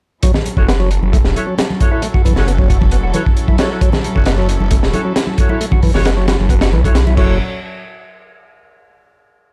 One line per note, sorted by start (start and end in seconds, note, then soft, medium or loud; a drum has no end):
0.23 0.32 F#3 loud
0.23 7.14 F#3 medium
0.23 7.14 C#4 medium
0.23 7.14 E4 medium
0.23 7.14 A4 medium
0.23 kick loud
0.23 closed hi-hat loud
0.34 snare medium
0.34 low conga medium
0.46 closed hi-hat medium
0.46 muted conga medium
0.46 high conga medium
0.57 0.98 F#1 loud
0.57 0.64 E4 medium
0.57 0.64 F#4 medium
0.57 0.64 A4 medium
0.57 0.64 C#5 loud
0.57 kick loud
0.68 0.73 B3 loud
0.68 snare loud
0.68 closed hi-hat medium
0.79 0.90 F#3 loud
0.79 muted conga medium
0.91 closed hi-hat medium
1.02 1.20 F#1 medium
1.02 high conga loud
1.13 1.18 A3 medium
1.13 kick loud
1.13 closed hi-hat medium
1.25 1.33 E1 medium
1.25 snare soft
1.25 muted conga medium
1.35 1.42 E4 medium
1.35 1.42 F#4 medium
1.35 1.42 A4 medium
1.35 1.42 C#5 loud
1.35 closed hi-hat medium
1.35 high conga medium
1.47 1.55 F#3 medium
1.58 snare loud
1.58 closed hi-hat medium
1.58 muted conga medium
1.70 high conga loud
1.80 1.90 E4 medium
1.80 1.90 F#4 medium
1.80 1.90 A4 medium
1.80 1.90 C#5 loud
1.80 kick loud
1.80 closed hi-hat medium
1.92 2.02 E4 loud
1.92 1.98 E4 medium
1.92 1.98 F#4 medium
1.92 1.98 A4 medium
1.92 1.98 C#5 medium
2.02 2.08 A3 medium
2.02 closed hi-hat medium
2.02 muted conga medium
2.14 2.22 F#4 medium
2.14 kick loud
2.25 2.33 E3 loud
2.25 kick medium
2.25 closed hi-hat medium
2.25 high conga medium
2.36 2.77 F#1 loud
2.36 2.43 E4 medium
2.36 2.43 F#4 medium
2.36 2.43 A4 medium
2.36 2.43 C#5 medium
2.36 snare soft
2.36 muted conga medium
2.36 low conga medium
2.47 2.52 B3 medium
2.47 closed hi-hat medium
2.58 2.69 F#3 loud
2.58 kick medium
2.70 2.78 F#4 medium
2.70 kick medium
2.70 closed hi-hat medium
2.81 2.99 F#1 medium
2.81 kick loud
2.81 muted conga medium
2.81 high conga loud
2.91 2.97 B3 medium
2.91 closed hi-hat medium
3.03 3.12 E1 medium
3.03 3.12 F#4 medium
3.14 3.23 E3 loud
3.14 3.21 E4 loud
3.14 3.21 F#4 medium
3.14 3.21 A4 medium
3.14 3.21 C#5 loud
3.14 closed hi-hat medium
3.14 muted conga medium
3.14 high conga medium
3.26 kick medium
3.37 closed hi-hat medium
3.48 3.56 E4 medium
3.48 kick medium
3.48 high conga loud
3.58 3.70 F#3 medium
3.58 3.69 E4 medium
3.58 3.69 F#4 medium
3.58 3.69 A4 medium
3.58 3.69 C#5 medium
3.58 snare loud
3.58 closed hi-hat medium
3.58 muted conga medium
3.70 3.77 E4 medium
3.70 3.77 F#4 medium
3.70 3.77 A4 medium
3.70 3.77 C#5 medium
3.81 3.90 F#3 loud
3.81 kick loud
3.81 closed hi-hat medium
3.92 snare medium
3.92 muted conga medium
3.92 low conga medium
4.04 closed hi-hat medium
4.04 high conga loud
4.15 4.57 F#1 loud
4.15 4.22 E4 medium
4.15 4.22 F#4 medium
4.15 4.22 A4 medium
4.15 4.22 C#5 loud
4.15 kick medium
4.26 4.31 B3 loud
4.26 snare loud
4.26 closed hi-hat medium
4.38 4.48 F#3 loud
4.38 muted conga medium
4.49 closed hi-hat medium
4.60 4.78 F#1 loud
4.60 high conga loud
4.71 4.76 A3 medium
4.71 kick loud
4.71 closed hi-hat medium
4.71 muted conga medium
4.83 4.92 E1 medium
4.83 snare medium
4.93 5.00 E4 loud
4.93 5.00 F#4 medium
4.93 5.00 A4 medium
4.93 5.00 C#5 loud
4.93 closed hi-hat medium
4.93 high conga loud
5.05 5.13 F#3 medium
5.16 snare loud
5.16 closed hi-hat medium
5.16 muted conga soft
5.27 high conga loud
5.38 5.48 E4 medium
5.38 5.48 F#4 medium
5.38 5.48 A4 medium
5.38 5.48 C#5 medium
5.38 kick medium
5.38 closed hi-hat medium
5.49 5.60 E4 loud
5.49 5.56 E4 medium
5.49 5.56 F#4 medium
5.49 5.56 A4 medium
5.49 5.56 C#5 medium
5.49 muted conga medium
5.60 5.66 A3 medium
5.60 closed hi-hat medium
5.71 5.80 F#4 medium
5.71 kick loud
5.71 low conga medium
5.83 5.92 E3 loud
5.83 kick medium
5.83 open hi-hat medium
5.83 high conga medium
5.95 6.36 F#1 loud
5.95 6.01 E4 medium
5.95 6.01 F#4 medium
5.95 6.01 A4 medium
5.95 6.01 C#5 loud
5.95 snare medium
5.95 muted conga medium
5.95 low conga medium
6.05 6.10 B3 medium
6.05 snare loud
6.05 closed hi-hat medium
6.17 6.27 F#3 loud
6.28 6.36 F#4 medium
6.28 snare loud
6.28 closed hi-hat medium
6.28 muted conga medium
6.40 6.74 F#1 loud
6.40 high conga loud
6.49 6.55 B3 medium
6.49 kick medium
6.49 closed hi-hat medium
6.61 6.70 F#4 medium
6.61 snare loud
6.61 closed hi-hat medium
6.73 7.17 B1 loud
6.73 6.81 E3 loud
6.73 muted conga medium
6.73 high conga loud
6.84 6.95 E4 medium
6.84 6.95 F#4 medium
6.84 6.95 A4 medium
6.84 6.95 C#5 loud
6.84 kick medium
6.84 closed hi-hat medium
6.95 snare loud
6.95 closed hi-hat medium
7.07 7.15 E4 medium
7.07 muted conga medium
7.07 high conga loud
7.17 7.38 F#1 loud
7.17 7.38 F#3 medium
7.17 7.39 F#3 loud
7.17 7.38 C#4 medium
7.17 7.38 E4 medium
7.17 7.34 E4 medium
7.17 7.34 F#4 medium
7.17 7.34 A4 medium
7.17 7.38 A4 medium
7.17 7.34 C#5 loud
7.17 kick loud
7.17 crash loud